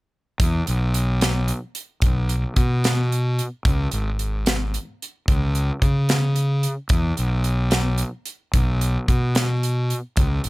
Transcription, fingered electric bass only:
0.41 0.61 E2 medium
0.68 1.51 B1 medium
2.02 2.44 B1 medium
2.56 3.40 B2 medium
3.65 3.86 C#2 medium
3.93 4.76 G#1 medium
5.28 5.70 C#2 medium
5.82 6.66 C#3 medium
6.90 7.11 E2 medium
7.19 8.02 B1 medium
8.54 8.96 B1 medium
9.09 9.92 B2 medium
10.18 10.39 C#2 loud
10.45 10.49 G#1 medium

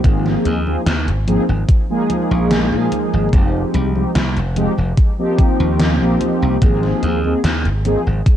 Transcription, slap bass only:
0.04 0.34 G#1 loud
0.46 0.76 D#2 medium
0.86 1.09 D#2 loud
1.08 1.37 G#1 medium
1.49 1.63 G#1 medium
2.31 2.74 A#1 loud
2.72 2.86 A#2 loud
3.13 3.28 G#1 medium
3.33 3.63 F1 loud
3.74 4.04 C2 medium
4.15 4.38 C2 loud
4.37 4.66 F1 medium
4.78 4.92 F1 medium
5.60 6.01 D#2 loud
6.01 6.15 A#1 loud
6.42 6.56 C2 medium
6.62 6.92 G#1 loud
7.03 7.33 D#2 medium
7.44 7.67 D#2 loud
7.65 7.95 G#1 medium
8.07 8.21 G#1 medium

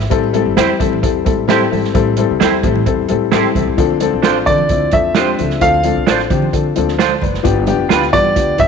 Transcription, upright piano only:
0.00 0.32 C5 soft
0.00 0.32 E5 medium
0.10 0.28 G3 loud
0.10 0.28 C4 loud
0.10 0.29 E4 medium
0.10 0.29 A4 loud
0.33 0.51 G3 loud
0.33 0.51 C4 medium
0.33 0.52 E4 medium
0.33 0.52 A4 loud
0.56 0.74 G3 medium
0.56 0.74 C4 medium
0.56 0.75 E4 medium
0.56 0.75 C5 medium
0.79 0.97 G3 medium
0.79 0.97 C4 medium
0.79 0.97 E4 medium
0.79 0.98 A4 medium
1.02 1.20 G3 medium
1.02 1.20 C4 medium
1.02 1.20 E4 medium
1.02 1.21 A4 medium
1.24 1.43 G3 medium
1.24 1.43 C4 medium
1.24 1.43 E4 medium
1.24 1.43 A4 medium
1.48 1.66 G3 loud
1.48 1.66 C4 loud
1.48 1.66 E4 loud
1.48 1.67 A4 loud
1.70 1.89 G3 medium
1.70 1.89 C4 medium
1.70 1.89 E4 medium
1.70 1.89 A4 medium
1.94 2.12 G3 loud
1.94 2.12 C4 medium
1.94 2.12 E4 medium
1.94 2.13 A4 loud
2.17 2.35 G3 medium
2.17 2.35 C4 medium
2.17 2.35 E4 medium
2.17 2.36 A4 loud
2.40 2.58 G3 medium
2.40 2.58 C4 medium
2.40 2.58 E4 medium
2.40 2.59 A4 medium
2.63 2.81 G3 medium
2.63 2.81 C4 medium
2.63 2.81 E4 medium
2.63 2.82 A4 medium
2.85 3.03 G3 medium
2.85 3.04 C4 medium
2.85 3.04 E4 medium
2.85 3.04 A4 medium
3.08 3.27 G3 medium
3.08 3.27 C4 medium
3.08 3.27 E4 medium
3.08 3.27 A4 medium
3.32 3.50 G3 loud
3.32 3.50 C4 loud
3.32 3.50 E4 loud
3.32 3.50 A4 loud
3.55 3.73 G3 medium
3.55 3.73 C4 medium
3.55 3.73 E4 medium
3.55 3.73 A4 medium
3.77 3.95 F3 loud
3.77 3.96 C4 medium
3.77 3.96 D4 medium
3.77 3.96 A4 loud
4.00 4.18 F3 loud
4.00 4.19 C4 medium
4.00 4.19 D4 medium
4.00 4.19 A4 loud
4.22 4.41 F3 medium
4.22 4.41 C4 medium
4.22 4.41 D4 medium
4.22 4.41 A4 medium
4.47 4.64 F3 medium
4.47 4.64 C4 medium
4.47 4.65 D4 medium
4.47 4.65 A4 medium
4.70 4.88 F3 medium
4.70 4.88 C4 medium
4.70 4.88 D4 medium
4.70 4.88 E4 medium
4.92 5.10 F3 medium
4.92 5.10 C4 medium
4.92 5.10 D4 medium
4.92 5.11 A4 medium
5.16 5.33 F3 medium
5.16 5.33 C4 medium
5.16 5.34 D4 medium
5.16 5.34 G4 loud
5.39 5.56 F3 medium
5.39 5.56 C4 medium
5.39 5.57 D4 medium
5.39 5.57 A4 medium
5.60 5.78 F3 medium
5.60 5.79 C4 medium
5.60 5.79 D4 medium
5.60 5.79 A4 medium
5.83 6.01 F3 medium
5.83 6.02 C4 medium
5.83 6.02 D4 medium
5.83 6.02 A4 medium
6.06 6.24 F3 medium
6.06 6.25 C4 medium
6.06 6.25 D4 medium
6.06 6.25 A4 medium
6.29 6.47 F3 medium
6.29 6.48 C4 medium
6.29 6.48 D4 medium
6.29 6.48 G4 medium
6.52 6.70 F3 medium
6.52 6.70 C4 medium
6.52 6.71 D4 medium
6.52 6.71 A4 medium
6.75 6.93 F3 medium
6.75 6.93 C4 medium
6.75 6.94 D4 medium
6.75 6.94 A4 medium
6.98 7.20 C5 medium
7.22 7.66 B4 medium
7.22 7.65 D5 medium
7.43 7.61 F3 loud
7.43 7.62 B3 loud
7.43 7.62 D4 medium
7.43 7.62 G4 loud
7.66 7.84 F3 medium
7.66 7.85 B3 medium
7.66 7.85 D4 medium
7.66 7.85 G4 loud
7.89 8.07 F3 medium
7.89 8.08 B3 medium
7.89 8.08 D4 medium
7.89 8.08 G4 loud
8.12 8.30 F3 medium
8.12 8.30 B3 medium
8.12 8.30 D4 medium
8.12 8.31 G4 medium
8.35 8.53 F3 medium
8.35 8.53 B3 medium
8.35 8.53 D4 medium
8.35 8.54 G4 medium
8.57 8.68 F3 medium
8.57 8.68 B3 medium
8.57 8.68 D4 medium
8.57 8.68 G4 medium

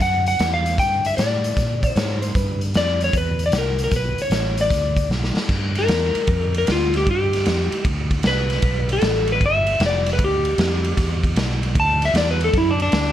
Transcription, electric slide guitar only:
0.02 0.26 F#5 loud
0.28 0.53 F#5 medium
0.54 0.79 F5 medium
0.79 1.06 G5 medium
1.06 1.17 E5 medium
1.17 1.88 D5 medium
1.88 2.19 C5 medium
2.77 3.03 D5 loud
3.04 3.17 C#5 loud
3.17 3.43 B4 medium
3.46 3.57 D5 loud
3.58 3.83 A#4 medium
3.84 3.96 A#4 medium
3.96 4.21 B4 medium
4.22 4.61 C#5 medium
4.61 5.09 D5 loud
5.79 6.54 A#4 medium
6.58 6.69 A#4 medium
6.72 6.95 F4 medium
6.97 7.08 G4 medium
7.11 7.85 G4 medium
8.27 8.89 B4 loud
8.93 9.29 A4 medium
9.32 9.43 B4 medium
9.46 9.82 E5 medium
9.86 10.09 D5 medium
10.13 10.23 B4 medium
10.24 11.36 G4 medium
11.80 12.04 A5 medium
12.05 12.17 E5 medium
12.17 12.29 D5 medium
12.31 12.42 B4 medium
12.44 12.56 A4 medium
12.58 12.69 E4 medium
12.71 12.81 D4 medium
12.82 13.12 D4 loud

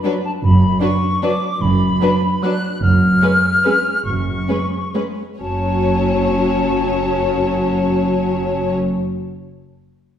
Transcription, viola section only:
0.04 0.12 F#3 soft
0.81 0.89 F#3 soft
1.22 1.30 F#3 soft
2.00 2.08 F#3 soft
2.43 2.51 F#3 soft
3.23 3.31 G#3 soft
3.65 3.73 G#3 soft
4.49 4.57 G#3 soft
4.95 5.03 G#3 soft
5.40 8.75 F#3 soft

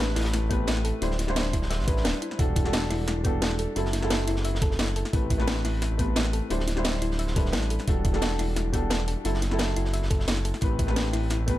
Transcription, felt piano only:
0.00 0.49 A3 loud
0.00 0.50 C4 medium
0.00 0.51 G4 medium
0.00 0.52 B4 loud
0.49 0.99 A3 medium
0.49 1.00 C4 medium
0.49 1.00 G4 medium
0.49 1.01 B4 loud
1.01 1.12 G3 medium
1.01 1.13 D4 medium
1.01 1.13 E4 medium
1.01 1.13 C5 medium
1.27 1.85 G3 medium
1.27 1.86 D4 medium
1.27 1.86 E4 medium
1.27 1.87 C5 loud
1.87 2.04 G3 medium
1.87 2.04 D4 medium
1.87 2.04 E4 medium
1.87 2.04 B4 medium
2.38 2.62 G3 medium
2.38 2.63 D4 medium
2.38 2.63 F#4 medium
2.38 2.63 A4 loud
2.64 3.22 G3 loud
2.64 3.23 D4 medium
2.64 3.23 F#4 medium
2.64 3.24 A4 loud
3.23 3.74 G3 medium
3.23 3.74 D4 medium
3.23 3.75 F#4 medium
3.23 3.75 A4 loud
3.75 3.86 F#3 medium
3.75 3.87 C4 medium
3.75 3.87 E4 medium
3.75 3.87 A4 medium
4.01 5.11 F#3 medium
4.01 5.11 C4 medium
4.01 5.12 E4 medium
4.01 5.12 A4 loud
5.13 5.36 A3 medium
5.13 5.37 C4 medium
5.13 5.38 G4 medium
5.13 5.38 B4 medium
5.38 5.96 A3 loud
5.38 5.97 C4 medium
5.38 5.97 G4 medium
5.38 5.98 B4 loud
5.97 6.48 A3 medium
5.97 6.48 C4 medium
5.97 6.49 G4 medium
5.97 6.49 B4 loud
6.50 6.61 G3 medium
6.50 6.61 D4 medium
6.50 6.61 E4 medium
6.50 6.62 C5 medium
6.75 7.34 G3 medium
6.75 7.34 D4 medium
6.75 7.35 E4 medium
6.75 7.35 C5 loud
7.36 7.52 G3 medium
7.36 7.52 D4 medium
7.36 7.53 E4 medium
7.36 7.53 B4 medium
7.87 8.11 G3 medium
7.87 8.12 D4 medium
7.87 8.12 F#4 medium
7.87 8.12 A4 medium
8.12 8.70 G3 medium
8.12 8.71 D4 medium
8.12 8.72 F#4 medium
8.12 8.72 A4 loud
8.72 9.22 G3 medium
8.72 9.23 D4 medium
8.72 9.23 F#4 medium
8.72 9.24 A4 loud
9.24 9.35 F#3 medium
9.24 9.35 C4 medium
9.24 9.36 E4 medium
9.24 9.36 A4 medium
9.50 10.59 F#3 medium
9.50 10.60 C4 medium
9.50 10.60 E4 medium
9.50 10.61 A4 loud
10.61 10.85 A3 medium
10.61 10.86 C4 medium
10.61 10.86 G4 medium
10.61 10.87 B4 medium
10.87 11.45 A3 loud
10.87 11.45 C4 medium
10.87 11.46 G4 medium
10.87 11.46 B4 loud
11.46 11.59 A3 medium
11.46 11.59 C4 medium
11.46 11.59 G4 medium
11.46 11.59 B4 loud

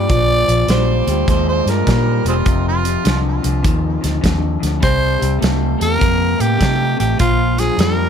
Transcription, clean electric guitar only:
0.08 0.44 A#2 medium
0.08 0.44 F3 medium
0.47 0.66 A#2 medium
0.47 0.66 F3 medium
0.68 1.03 A#2 medium
0.68 1.04 G3 medium
1.08 1.26 A#2 medium
1.08 1.26 G3 medium
1.27 1.63 A#2 medium
1.27 1.63 G#3 medium
1.67 1.85 A#2 medium
1.67 1.85 G#3 medium
1.87 2.22 A#2 medium
1.87 2.22 G3 medium
2.26 2.44 A#2 medium
2.26 2.44 G3 medium
2.45 2.81 F2 medium
2.45 2.81 C3 loud
2.84 3.02 F2 medium
2.84 3.03 C3 medium
3.04 3.39 F2 medium
3.04 3.40 D3 medium
3.42 3.62 F2 medium
3.42 3.62 D3 medium
3.63 3.99 F2 medium
3.63 3.99 D#3 medium
4.01 4.20 F2 medium
4.01 4.21 D#3 medium
4.21 4.57 F2 medium
4.21 4.58 D3 medium
4.59 4.79 F2 medium
4.59 4.80 D3 medium
4.80 5.16 C3 medium
4.80 5.16 G3 loud
5.19 5.38 C3 medium
5.19 5.39 G3 medium
5.39 5.75 C3 medium
5.39 5.75 A3 medium
5.77 5.97 C3 medium
5.77 5.98 A3 medium
5.98 6.35 C3 medium
5.98 6.35 A#3 medium
6.37 6.57 C3 medium
6.37 6.57 A#3 medium
6.58 6.94 C3 medium
6.58 6.94 A3 medium
6.97 7.16 C3 medium
6.97 7.17 A3 medium
7.18 7.53 A#2 medium
7.18 7.54 F3 medium
7.57 7.75 A#2 medium
7.57 7.76 F3 medium
7.77 8.09 A#2 medium
7.77 8.09 G3 medium

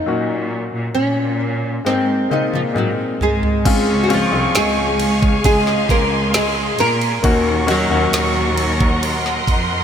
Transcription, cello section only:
0.07 0.70 A#2 medium
0.74 0.95 A#2 medium
0.96 1.82 A#2 medium
1.86 2.28 G#2 medium
2.31 3.17 A#2 medium
3.21 3.62 G#2 medium
3.65 4.29 C#2 loud
4.33 4.54 C2 medium
4.56 5.41 C#2 loud
5.45 6.75 C#2 loud
6.79 7.21 A#2 medium
7.24 7.87 D#2 loud
7.91 8.12 D#2 loud
8.13 9.44 D#2 loud
9.47 9.84 F2 medium

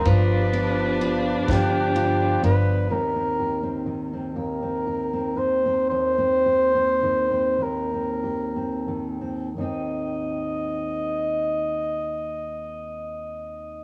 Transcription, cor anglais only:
0.00 0.10 A#4 medium
0.09 1.50 B4 loud
1.51 2.41 G4 medium
2.45 2.93 B4 medium
2.91 3.87 A#4 medium
4.38 5.39 A#4 medium
5.38 5.89 C5 medium
5.90 7.64 C5 loud
7.63 9.06 A#4 medium
9.60 13.84 D#5 medium

